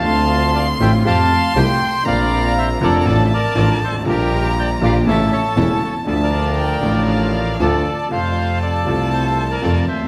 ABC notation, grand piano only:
X:1
M:4/4
L:1/16
Q:1/4=119
K:Dm
V:1 name="Grand piano" clef=bass
[D,,D,A,CF]6 [A,,,A,,D,A,CF]2 [F,,F,A,CG]2 z2 [C,,C,F,A,CG]2 z2 | [B,,,B,,D,B,CF]6 [F,,,F,,D,B,CF]2 [A,,,A,,D,F,A,F]2 z2 [A,,,A,,D,F,A,F]2 z/2 G,,,/2 ^G,,,/2 A,,,/2 | [B,,,B,,D,G,B,F]6 [B,,,B,,D,G,B,F]2 [A,,,A,,^C,E,A,E]2 z2 [E,,,E,,C,E,A,E]2 z2 | [D,,D,F,F]6 [A,,,A,,D,F,F]6 [D,,D,F,A,F]2 z2 |
[F,,C,F,A,F]6 [C,,C,F,A,F]6 [F,,C,F,A,F]2 z/2 D,,/2 _E,,/2 =E,,/2 |]